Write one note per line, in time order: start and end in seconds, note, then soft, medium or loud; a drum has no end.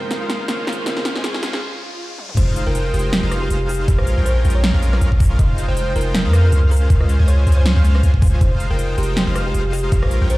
0.00 0.66 D#3 medium
0.00 0.69 F3 medium
0.00 0.19 G#3 medium
0.00 0.63 G#3 medium
0.00 0.69 C4 medium
0.00 0.19 D#4 medium
0.00 0.19 F4 medium
0.00 1.58 F4 medium
0.00 0.69 G4 medium
0.00 0.69 G#4 medium
0.00 0.19 C5 medium
0.00 0.67 C5 medium
0.00 1.59 C5 medium
0.00 0.70 D#5 medium
0.00 0.19 G5 medium
0.00 riser medium
0.11 0.34 A#4 loud
0.11 snare medium
0.11 closed hi-hat medium
0.21 0.50 F2 loud
0.21 0.46 G#3 loud
0.21 0.46 D#4 medium
0.21 0.46 F4 medium
0.21 0.46 C5 medium
0.21 0.46 F5 loud
0.30 snare medium
0.30 closed hi-hat medium
0.40 0.62 A#4 medium
0.48 0.84 C#2 loud
0.48 0.84 G#3 loud
0.48 0.84 C#4 medium
0.48 0.84 F4 medium
0.48 0.84 C5 medium
0.48 0.84 F5 loud
0.48 snare medium
0.48 closed hi-hat medium
0.67 0.91 A#4 medium
0.67 snare medium
0.67 closed hi-hat medium
0.72 closed hi-hat medium
0.85 1.12 C#3 medium
0.85 1.13 G#3 medium
0.85 1.13 C#4 medium
0.85 1.13 F4 medium
0.85 1.13 C5 medium
0.85 1.14 D#5 medium
0.85 1.13 F5 loud
0.85 snare medium
0.85 closed hi-hat medium
0.97 1.19 G#4 medium
0.97 snare medium
1.05 snare medium
1.05 closed hi-hat medium
1.13 1.41 C#2 loud
1.13 1.61 C#3 medium
1.13 1.41 G#3 medium
1.13 1.61 C#4 medium
1.13 1.41 C#4 medium
1.13 1.62 F4 medium
1.13 1.41 F4 medium
1.13 1.41 C5 medium
1.13 1.62 C5 medium
1.13 1.41 G#5 loud
1.13 snare medium
1.17 1.63 D#5 medium
1.24 1.47 G#4 medium
1.24 snare loud
1.24 closed hi-hat medium
1.34 snare medium
1.43 1.62 C#2 loud
1.43 1.62 G#3 medium
1.43 1.62 C#4 medium
1.43 1.62 F4 medium
1.43 1.62 C5 medium
1.43 1.62 G#5 medium
1.43 snare loud
1.43 closed hi-hat medium
1.53 2.31 G#4 medium
1.53 snare medium
1.62 swell medium
2.18 high tom medium
2.29 mid tom medium
2.37 2.64 F1 loud
2.37 2.64 G#3 medium
2.37 2.64 D#4 medium
2.37 2.64 F4 medium
2.37 2.60 C5 loud
2.37 2.64 C5 medium
2.37 2.64 F5 loud
2.37 kick loud
2.37 closed hi-hat medium
2.37 crash loud
2.56 closed hi-hat medium
2.66 2.92 F1 loud
2.66 2.92 G#3 medium
2.66 2.92 D#4 medium
2.66 2.92 F4 medium
2.66 2.89 A#4 medium
2.66 2.92 C5 medium
2.66 2.92 G5 medium
2.75 closed hi-hat medium
2.94 3.21 F1 loud
2.94 3.21 G#3 medium
2.94 3.21 D#4 medium
2.94 3.21 F4 medium
2.94 3.09 G4 medium
2.94 3.21 C5 medium
2.94 3.21 G5 medium
2.94 closed hi-hat medium
2.99 closed hi-hat medium
3.13 3.36 G4 loud
3.13 snare loud
3.13 closed hi-hat medium
3.23 3.49 F1 loud
3.23 3.48 G#3 loud
3.23 3.48 D#4 medium
3.23 3.48 F4 medium
3.23 3.48 C5 medium
3.23 3.48 F5 loud
3.32 cross-stick medium
3.32 closed hi-hat medium
3.42 3.64 G4 loud
3.50 3.86 F1 loud
3.50 3.86 G#3 loud
3.50 3.86 D#4 medium
3.50 3.86 F4 medium
3.50 3.86 C5 medium
3.50 3.86 F5 loud
3.50 closed hi-hat medium
3.69 3.92 G4 medium
3.69 open hi-hat loud
3.74 closed hi-hat medium
3.88 4.15 A#1 loud
3.88 4.15 G#3 medium
3.88 4.15 C#4 medium
3.88 4.15 F4 medium
3.88 4.15 A#4 medium
3.88 4.15 F5 loud
3.88 kick loud
3.88 closed hi-hat medium
3.98 4.21 C5 loud
3.98 cross-stick medium
4.07 closed hi-hat medium
4.18 4.43 A#1 loud
4.18 4.43 G#3 medium
4.18 4.43 C#4 medium
4.18 4.43 F4 medium
4.18 4.43 A#4 medium
4.18 4.43 G5 medium
4.26 4.49 C5 loud
4.26 closed hi-hat medium
4.45 4.72 A#1 loud
4.45 4.72 G#3 medium
4.45 4.72 C#4 medium
4.45 4.72 F4 medium
4.45 4.72 A#4 medium
4.45 4.72 G5 medium
4.45 closed hi-hat medium
4.50 closed hi-hat medium
4.55 5.32 C#5 medium
4.64 snare loud
4.64 closed hi-hat medium
4.74 5.00 A#1 loud
4.74 4.99 G#3 loud
4.74 4.99 C#4 medium
4.74 4.99 F4 medium
4.74 4.99 A#4 medium
4.74 4.99 F5 loud
4.82 closed hi-hat medium
4.93 cross-stick medium
4.93 snare soft
5.01 5.37 A#1 loud
5.01 5.37 G#3 loud
5.01 5.37 C#4 medium
5.01 5.37 F4 medium
5.01 5.37 A#4 medium
5.01 5.37 F5 loud
5.01 closed hi-hat medium
5.12 kick medium
5.20 kick loud
5.20 open hi-hat medium
5.25 closed hi-hat medium
5.39 5.66 F1 loud
5.39 5.66 G#3 medium
5.39 5.66 D#4 medium
5.39 5.66 F4 medium
5.39 5.66 C5 medium
5.39 5.62 D#5 loud
5.39 5.66 F5 loud
5.39 kick loud
5.39 closed hi-hat medium
5.58 closed hi-hat medium
5.68 5.94 F1 loud
5.68 5.94 G#3 medium
5.68 5.94 D#4 medium
5.68 5.94 F4 medium
5.68 5.91 C5 loud
5.68 5.94 C5 medium
5.68 5.94 G5 medium
5.77 closed hi-hat medium
5.96 6.27 F1 loud
5.96 6.23 G#3 medium
5.96 6.23 D#4 medium
5.96 6.23 F4 medium
5.96 6.11 A#4 medium
5.96 6.23 C5 medium
5.96 6.23 G5 medium
5.96 closed hi-hat soft
6.01 closed hi-hat medium
6.14 6.38 A#4 loud
6.14 snare loud
6.14 closed hi-hat medium
6.25 6.51 F2 loud
6.25 6.50 G#3 loud
6.25 6.50 D#4 medium
6.25 6.50 F4 medium
6.25 6.50 C5 medium
6.25 6.50 F5 loud
6.33 cross-stick medium
6.33 closed hi-hat medium
6.44 6.66 A#4 loud
6.52 6.88 C#2 loud
6.52 6.88 G#3 loud
6.52 6.88 C#4 medium
6.52 6.88 F4 medium
6.52 6.88 C5 medium
6.52 6.88 F5 loud
6.52 closed hi-hat medium
6.71 6.94 A#4 medium
6.71 open hi-hat medium
6.77 closed hi-hat medium
6.90 7.17 C#2 loud
6.90 7.17 G#3 loud
6.90 7.17 C#4 medium
6.90 7.17 F4 medium
6.90 7.17 C5 medium
6.90 7.17 F5 loud
6.90 kick loud
6.90 closed hi-hat medium
7.01 7.23 D#5 medium
7.01 cross-stick medium
7.09 closed hi-hat medium
7.19 7.45 C#2 loud
7.19 7.45 G#3 medium
7.19 7.45 C#4 medium
7.19 7.45 F4 medium
7.19 7.45 C5 medium
7.19 7.45 G#5 medium
7.28 7.51 C#5 loud
7.28 closed hi-hat medium
7.47 7.74 C#2 loud
7.47 7.74 G#3 medium
7.47 7.74 C#4 medium
7.47 7.74 F4 medium
7.47 7.74 C5 medium
7.47 7.74 G#5 medium
7.47 closed hi-hat soft
7.52 closed hi-hat medium
7.57 8.34 C5 medium
7.66 snare loud
7.66 closed hi-hat medium
7.76 8.02 C#2 loud
7.76 8.01 G#3 loud
7.76 8.01 C#4 medium
7.76 8.01 F4 medium
7.76 8.01 C5 medium
7.76 8.01 F5 loud
7.84 closed hi-hat medium
7.95 cross-stick medium
7.95 snare soft
8.03 8.39 C#2 loud
8.03 8.39 G#3 medium
8.03 8.39 C#4 medium
8.03 8.39 F4 medium
8.03 8.39 C5 medium
8.03 8.39 G#5 loud
8.03 closed hi-hat medium
8.14 kick medium
8.22 kick loud
8.22 open hi-hat medium
8.27 closed hi-hat medium
8.41 8.68 F1 loud
8.41 8.68 G#3 medium
8.41 8.68 D#4 medium
8.41 8.68 F4 medium
8.41 8.68 C5 medium
8.41 8.64 C5 loud
8.41 8.68 F5 loud
8.41 kick loud
8.41 closed hi-hat medium
8.60 closed hi-hat medium
8.70 8.96 F1 loud
8.70 8.96 G#3 medium
8.70 8.96 D#4 medium
8.70 8.96 F4 medium
8.70 8.93 A#4 loud
8.70 8.96 C5 medium
8.70 8.96 G5 loud
8.79 closed hi-hat medium
8.98 9.25 F1 loud
8.98 9.25 G#3 medium
8.98 9.25 D#4 medium
8.98 9.25 F4 medium
8.98 9.13 G4 medium
8.98 9.25 C5 medium
8.98 9.25 G5 medium
8.98 closed hi-hat soft
9.03 closed hi-hat medium
9.17 9.40 G4 loud
9.17 snare loud
9.17 closed hi-hat medium
9.27 9.53 F1 loud
9.27 9.52 G#3 loud
9.27 9.52 D#4 medium
9.27 9.52 F4 medium
9.27 9.52 C5 medium
9.27 9.52 F5 loud
9.36 cross-stick medium
9.36 closed hi-hat medium
9.46 9.68 G4 loud
9.54 9.90 F1 loud
9.54 9.90 G#3 loud
9.54 9.90 D#4 medium
9.54 9.90 F4 medium
9.54 9.90 C5 medium
9.54 9.90 F5 loud
9.54 closed hi-hat medium
9.73 9.96 G4 medium
9.73 open hi-hat medium
9.78 closed hi-hat medium
9.92 10.19 A#1 loud
9.92 10.19 G#3 medium
9.92 10.19 C#4 medium
9.92 10.19 F4 medium
9.92 10.19 A#4 medium
9.92 10.19 F5 loud
9.92 kick loud
9.92 closed hi-hat medium
10.03 10.25 C5 medium
10.03 cross-stick medium
10.11 closed hi-hat medium
10.21 10.38 A#1 loud
10.21 10.38 G#3 medium
10.21 10.38 C#4 medium
10.21 10.38 F4 medium
10.21 10.38 A#4 medium
10.21 10.38 G5 medium
10.30 10.38 C5 loud
10.30 closed hi-hat medium